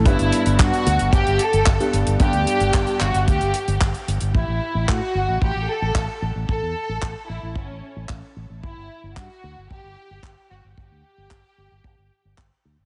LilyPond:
<<
  \new Staff \with { instrumentName = "Violin section" } { \time 4/4 \key g \lydian \tempo 4 = 112 e'4 fis'4 g'8 a'4 r8 | g'4. fis'8 g'4 r4 | e'4 fis'4 g'8 a'4 r8 | a'4. e'8 cis'4 r4 |
e'4 fis'4 g'4. fis'8 | g'2. r4 | }
  \new Staff \with { instrumentName = "Grand piano" } { \time 4/4 \key g \lydian <g, g b d' b'>2~ <g, g b d' b'>8 r8. <g, g b d' g'>8. | <g, g b d' g'>2~ <g, g b d' g'>8 r4. | r1 | r1 |
r1 | r1 | }
  \new Staff \with { instrumentName = "Fingered electric bass" } { \clef bass \time 4/4 \key g \lydian r16 g,,16 r16 g,,16 g,16 r16 d,16 g,,16 g,,16 g,,16 r16 g,,16 g,,16 r16 g,,16 g,,16 | g,,16 d,16 r16 g,,16 g,,16 r16 g,,16 g,,16 d,16 g,,16 r16 g,,16 g,,16 r16 g,,16 g,,16 | a,,16 a,,16 r16 a,,16 a,16 r16 g,,16 a,,16 a,,16 a,,16 r16 a,,16 a,,16 r16 a,,16 a,,16 | a,,16 e,16 r16 a,,16 a,,16 r16 a,,16 a,,16 g,,16 a,,16 r16 a,,16 a,,16 r16 a,,16 a,,16 |
g,,16 g,,16 r16 g,,16 g,16 r16 d,16 g,,16 g,,16 g,,16 r16 g,,16 g,,16 r16 g,,16 g,,16 | g,,16 d,16 r16 g,,16 g,,16 r16 g,,16 g,,16 g,,16 g,,16 r16 g,,16 g,,16 r16 d,16 g,,16 | }
  \new DrumStaff \with { instrumentName = "Drums" } \drummode { \time 4/4 <hh bd>16 hh16 hh16 hh16 <hc hh bd>16 hh16 hh16 hh16 <hh bd>16 hh16 hh16 hh16 <hc hh bd>16 hh16 hh16 hh16 | <hh bd>16 hh16 hh16 hh16 <hc hh bd>16 hh16 <hc hh>16 hh16 <hh bd>16 hh16 hh16 hh16 <hc hh bd>16 hh16 hh16 hh16 | bd4 <hc bd>4 bd4 <hc bd>4 | bd4 <hc bd>4 bd4 <hc bd>4 |
bd4 <hc bd>4 bd4 <hc bd>4 | bd4 <hc bd>4 bd4 <hc bd>4 | }
>>